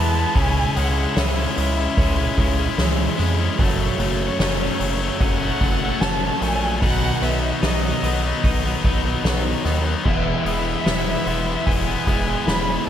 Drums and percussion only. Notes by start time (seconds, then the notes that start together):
0.35 kick, open hi-hat
0.76 open hi-hat
1.17 snare, open hi-hat
1.57 open hi-hat
1.98 kick, open hi-hat
2.38 kick, open hi-hat
2.78 snare, open hi-hat
3.19 snare, open hi-hat
3.59 kick, open hi-hat
4.00 open hi-hat
4.40 snare, open hi-hat
4.80 open hi-hat
5.20 kick, open hi-hat
5.61 kick, open hi-hat
6.01 snare, open hi-hat
6.42 snare, open hi-hat
6.82 kick, open hi-hat
7.23 open hi-hat
7.63 snare, open hi-hat
8.04 open hi-hat
8.44 kick, open hi-hat
8.84 kick, open hi-hat
9.25 snare, open hi-hat
9.65 snare, open hi-hat
10.06 kick, crash
10.46 open hi-hat
10.86 snare, open hi-hat
11.27 open hi-hat
11.67 kick, open hi-hat
12.07 kick, open hi-hat
12.48 snare, open hi-hat